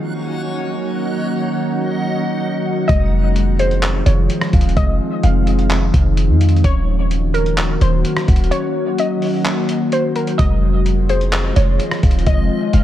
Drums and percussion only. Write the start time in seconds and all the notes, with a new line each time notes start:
2.89 kick, closed hi-hat
3.36 closed hi-hat
3.59 closed hi-hat
3.71 closed hi-hat
3.83 clap, closed hi-hat
4.06 closed hi-hat
4.30 closed hi-hat
4.41 cross-stick
4.53 kick, closed hi-hat
4.61 closed hi-hat
4.69 closed hi-hat
4.77 kick, closed hi-hat
5.23 closed hi-hat
5.47 closed hi-hat
5.59 closed hi-hat
5.70 clap, closed hi-hat
5.94 kick, closed hi-hat
6.17 closed hi-hat
6.41 closed hi-hat
6.49 closed hi-hat
6.56 closed hi-hat
6.64 kick, closed hi-hat
7.11 closed hi-hat
7.34 closed hi-hat
7.46 closed hi-hat
7.58 clap, closed hi-hat
7.81 closed hi-hat
8.05 closed hi-hat
8.17 cross-stick
8.28 kick, closed hi-hat
8.36 closed hi-hat
8.44 closed hi-hat
8.52 closed hi-hat
8.98 closed hi-hat
9.22 open hi-hat
9.45 clap, closed hi-hat
9.69 closed hi-hat
9.92 closed hi-hat
10.16 closed hi-hat
10.27 closed hi-hat
10.39 kick, closed hi-hat
10.86 closed hi-hat
11.09 closed hi-hat
11.21 closed hi-hat
11.33 clap, closed hi-hat
11.56 closed hi-hat
11.80 closed hi-hat
11.91 cross-stick
12.03 kick, closed hi-hat
12.11 closed hi-hat
12.19 closed hi-hat
12.27 kick, closed hi-hat
12.73 closed hi-hat